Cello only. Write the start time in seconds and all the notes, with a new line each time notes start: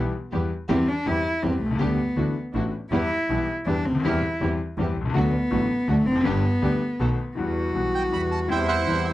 0.70 C4
0.88 D4
1.07 E4
1.43 C4
1.61 A3
1.80 B3
2.92 E4
3.66 D4
3.85 C4
4.04 E4
5.15 B3
5.88 A3
6.06 C4
6.25 B3
7.37 F#4
8.49 E4